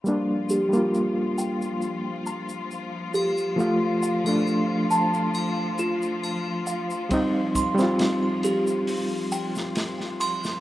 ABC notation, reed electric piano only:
X:1
M:4/4
L:1/16
Q:1/4=68
K:Gm
V:1 name="Reed electric piano"
[G,B,D]3 [G,B,F]12- [G,B,F] | [F,A,F]3 [F,A,D] z12 | [G,CE]3 [G,CF]12- [G,CF] |]